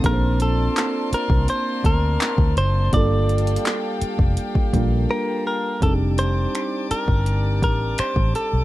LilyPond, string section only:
\new Staff \with { instrumentName = "String section" } { \time 4/4 \key f \mixolydian \tempo 4 = 83 << { <bes d'' c'''>1 | <g' f'' g''>1 | <g' d'' d'''>1 | } \\ { a''1~ | a''1 | a''1 | } >> }